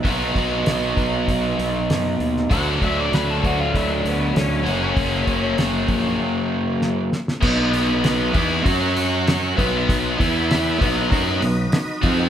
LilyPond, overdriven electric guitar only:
\new Staff \with { instrumentName = "Overdriven electric guitar" } { \time 4/4 \key fis \mixolydian \tempo 4 = 98 <b, fis b dis' fis'>1 | <d fis a d' fis'>2.~ <d fis a d' fis'>8 <fis, cis fis ais cis' fis'>8~ | <fis, cis fis ais cis' fis'>2.~ <fis, cis fis ais cis' fis'>8 r8 | \key b \major <b, fis b>4. <e b e'>8 <fis cis' fis'>4. <b, fis b>8~ |
<b, fis b>8 <e b e'>4 <b, fis b>8 <fis cis' fis'>8 <b, fis>8 r8 <eis c' eis'>8 | }